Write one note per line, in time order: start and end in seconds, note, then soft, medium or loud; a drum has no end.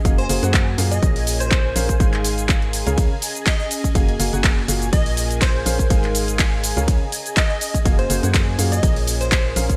0.00 0.45 C#4 medium
0.00 0.45 G#4 medium
0.00 9.77 G#4 medium
0.00 0.45 D#5 medium
0.00 9.77 G#5 medium
0.05 0.27 F#1 loud
0.05 0.21 A#3 medium
0.05 1.03 F#4 medium
0.05 0.21 F#4 medium
0.05 0.21 G#4 medium
0.05 0.21 F5 medium
0.05 kick loud
0.05 closed hi-hat medium
0.05 cabasa soft
0.18 0.34 C5 loud
0.18 closed hi-hat soft
0.29 0.40 F#1 medium
0.29 0.40 A#3 medium
0.29 0.40 F#4 medium
0.29 0.40 G#4 medium
0.29 0.40 F5 medium
0.29 open hi-hat loud
0.29 cabasa medium
0.33 1.43 G#5 medium
0.43 0.76 F#2 loud
0.43 0.76 A#3 medium
0.43 0.76 F#4 medium
0.43 0.76 G#4 medium
0.43 0.76 F#5 medium
0.43 closed hi-hat soft
0.43 cabasa soft
0.49 1.43 C#5 medium
0.54 kick loud
0.54 clap loud
0.54 closed hi-hat medium
0.54 cabasa soft
0.78 1.00 F#2 loud
0.78 0.94 A#2 medium
0.78 0.94 A#3 medium
0.78 0.94 F#4 medium
0.78 0.94 G#4 medium
0.78 0.94 F5 medium
0.78 open hi-hat loud
0.78 cabasa medium
0.92 1.07 D#5 loud
0.92 closed hi-hat medium
0.92 cabasa soft
1.03 1.74 A#1 loud
1.03 1.73 A#2 medium
1.03 1.73 C#4 medium
1.03 1.73 G#4 medium
1.03 1.73 A#4 medium
1.03 2.40 A#4 loud
1.03 1.73 D#5 medium
1.03 kick loud
1.03 closed hi-hat medium
1.03 cabasa soft
1.16 open hi-hat medium
1.27 open hi-hat loud
1.27 cabasa medium
1.40 2.05 C5 medium
1.40 closed hi-hat soft
1.40 cabasa soft
1.47 2.40 F5 medium
1.47 2.40 C6 medium
1.51 kick loud
1.51 clap loud
1.51 closed hi-hat medium
1.51 cabasa soft
1.76 1.98 A#1 loud
1.76 1.92 C#4 loud
1.76 1.92 G#4 medium
1.76 1.92 A#4 medium
1.76 1.92 F5 loud
1.76 open hi-hat loud
1.76 cabasa medium
1.89 kick medium
1.89 closed hi-hat medium
1.89 cabasa soft
2.00 2.84 G#1 medium
2.00 2.83 G#3 medium
2.00 2.83 D#4 medium
2.00 2.83 G#4 medium
2.00 4.35 G#4 medium
2.00 2.83 C5 medium
2.00 2.83 F5 medium
2.00 kick loud
2.00 closed hi-hat medium
2.00 cabasa soft
2.13 clap soft
2.13 closed hi-hat soft
2.24 open hi-hat loud
2.24 cabasa medium
2.38 closed hi-hat soft
2.38 cabasa soft
2.45 4.35 D#5 loud
2.45 3.38 A#5 medium
2.49 kick loud
2.49 clap loud
2.49 closed hi-hat medium
2.49 cabasa soft
2.62 closed hi-hat soft
2.73 open hi-hat loud
2.73 cabasa medium
2.87 3.09 C#2 medium
2.87 3.11 C#3 medium
2.87 3.11 C#4 medium
2.87 3.11 G#4 medium
2.87 3.11 A#4 medium
2.87 3.11 F5 loud
2.87 closed hi-hat medium
2.87 cabasa soft
2.98 4.35 C#4 medium
2.98 kick loud
2.98 closed hi-hat medium
2.98 ride medium
2.98 cabasa soft
3.22 open hi-hat loud
3.22 cabasa medium
3.35 closed hi-hat soft
3.35 cabasa soft
3.46 3.55 D#5 medium
3.46 kick loud
3.46 clap loud
3.46 closed hi-hat medium
3.46 ride medium
3.46 cabasa soft
3.60 3.67 D#5 medium
3.71 open hi-hat loud
3.71 cabasa medium
3.84 kick medium
3.84 closed hi-hat soft
3.84 cabasa soft
3.95 4.17 F#1 loud
3.95 4.12 A#3 medium
3.95 4.93 F#4 medium
3.95 4.12 F#4 medium
3.95 4.12 G#4 medium
3.95 4.12 F5 medium
3.95 kick loud
3.95 closed hi-hat medium
3.95 ride medium
3.95 cabasa soft
4.09 closed hi-hat soft
4.20 4.30 F#1 loud
4.20 4.30 A#3 medium
4.20 4.30 F#4 medium
4.20 4.30 G#4 medium
4.20 4.30 F5 medium
4.20 open hi-hat loud
4.20 cabasa medium
4.33 4.66 F#1 loud
4.33 4.66 A#3 medium
4.33 4.66 F#4 medium
4.33 4.66 G#4 medium
4.33 4.66 F#5 medium
4.33 closed hi-hat soft
4.33 cabasa soft
4.40 5.33 C#5 medium
4.40 5.33 G#5 medium
4.44 kick loud
4.44 clap loud
4.44 closed hi-hat medium
4.44 ride medium
4.44 cabasa soft
4.68 4.91 F#1 loud
4.68 4.85 A#2 medium
4.68 4.85 A#3 medium
4.68 4.85 F#4 medium
4.68 4.85 G#4 medium
4.68 4.85 F5 medium
4.68 open hi-hat loud
4.68 cabasa medium
4.82 closed hi-hat medium
4.82 cabasa soft
4.93 5.64 A#1 loud
4.93 5.63 A#2 medium
4.93 5.63 C#4 medium
4.93 5.63 G#4 medium
4.93 6.30 A#4 medium
4.93 5.63 A#4 medium
4.93 5.10 D#5 medium
4.93 5.63 D#5 medium
4.93 kick loud
4.93 closed hi-hat medium
4.93 ride medium
4.93 cabasa soft
5.06 open hi-hat medium
5.12 6.30 F5 medium
5.17 open hi-hat loud
5.17 cabasa medium
5.31 closed hi-hat medium
5.31 cabasa soft
5.37 6.30 C6 medium
5.42 5.79 C5 loud
5.42 kick loud
5.42 clap loud
5.42 closed hi-hat medium
5.42 ride medium
5.42 cabasa soft
5.66 5.88 A#1 medium
5.66 5.82 C#4 medium
5.66 5.82 G#4 medium
5.66 5.82 A#4 medium
5.66 5.82 F5 loud
5.66 open hi-hat loud
5.66 cabasa medium
5.79 kick medium
5.79 closed hi-hat medium
5.79 cabasa soft
5.90 6.74 G#1 loud
5.90 6.74 G#3 medium
5.90 6.74 D#4 medium
5.90 6.74 G#4 medium
5.90 8.25 G#4 medium
5.90 6.74 C5 medium
5.90 6.74 F5 loud
5.90 kick loud
5.90 closed hi-hat medium
5.90 ride medium
5.90 cabasa soft
6.04 clap soft
6.04 closed hi-hat soft
6.15 open hi-hat loud
6.15 cabasa medium
6.28 closed hi-hat medium
6.28 cabasa soft
6.35 8.25 D#5 medium
6.35 7.28 A#5 medium
6.39 kick loud
6.39 clap loud
6.39 closed hi-hat medium
6.39 ride medium
6.39 cabasa soft
6.64 open hi-hat loud
6.64 cabasa medium
6.77 6.99 C#2 medium
6.77 7.02 C#3 medium
6.77 7.02 C#4 medium
6.77 7.02 G#4 medium
6.77 7.02 A#4 medium
6.77 7.02 F5 loud
6.77 closed hi-hat medium
6.77 cabasa soft
6.88 8.25 C#4 medium
6.88 kick loud
6.88 closed hi-hat medium
6.88 ride medium
6.88 cabasa soft
7.12 open hi-hat loud
7.12 cabasa medium
7.26 closed hi-hat medium
7.26 cabasa soft
7.37 7.45 D#5 medium
7.37 kick loud
7.37 clap loud
7.37 closed hi-hat medium
7.37 ride medium
7.37 cabasa soft
7.50 7.57 D#5 medium
7.61 open hi-hat loud
7.61 cabasa medium
7.74 kick medium
7.74 closed hi-hat medium
7.74 cabasa soft
7.85 8.08 F#1 loud
7.85 8.02 A#3 medium
7.85 8.83 F#4 medium
7.85 8.02 F#4 medium
7.85 8.02 G#4 medium
7.85 8.02 F5 medium
7.85 kick loud
7.85 closed hi-hat medium
7.85 ride medium
7.85 cabasa soft
7.99 8.14 C5 medium
7.99 closed hi-hat soft
8.10 8.21 F#1 loud
8.10 8.20 A#3 medium
8.10 8.20 F#4 medium
8.10 8.20 G#4 medium
8.10 8.20 F5 medium
8.10 open hi-hat loud
8.10 cabasa medium
8.23 8.56 F#2 loud
8.23 8.56 A#3 medium
8.23 8.56 F#4 medium
8.23 8.56 G#4 medium
8.23 8.56 F#5 medium
8.23 closed hi-hat medium
8.23 cabasa soft
8.30 9.23 C#5 medium
8.30 9.23 G#5 medium
8.34 kick loud
8.34 clap loud
8.34 closed hi-hat medium
8.34 ride medium
8.34 cabasa soft
8.59 8.81 F#2 loud
8.59 8.75 A#2 medium
8.59 8.75 A#3 medium
8.59 8.75 F#4 medium
8.59 8.75 G#4 medium
8.59 8.75 F5 medium
8.59 open hi-hat loud
8.59 cabasa medium
8.72 8.88 D#5 loud
8.72 closed hi-hat medium
8.72 cabasa soft
8.83 9.54 A#1 loud
8.83 9.54 A#2 medium
8.83 9.54 C#4 medium
8.83 9.54 G#4 medium
8.83 9.77 A#4 loud
8.83 9.54 A#4 medium
8.83 9.54 D#5 medium
8.83 kick loud
8.83 closed hi-hat medium
8.83 ride medium
8.83 cabasa soft
8.96 open hi-hat medium
9.01 9.77 F5 medium
9.06 9.77 C6 medium
9.06 open hi-hat loud
9.06 cabasa medium
9.21 9.77 C5 medium
9.21 closed hi-hat medium
9.21 cabasa soft
9.32 kick loud
9.32 clap loud
9.32 closed hi-hat medium
9.32 ride medium
9.32 cabasa soft
9.56 9.77 A#1 loud
9.56 9.73 C#4 medium
9.56 9.73 G#4 medium
9.56 9.73 A#4 medium
9.56 9.73 F5 loud
9.56 open hi-hat loud
9.56 cabasa medium
9.70 kick medium
9.70 closed hi-hat medium
9.70 cabasa soft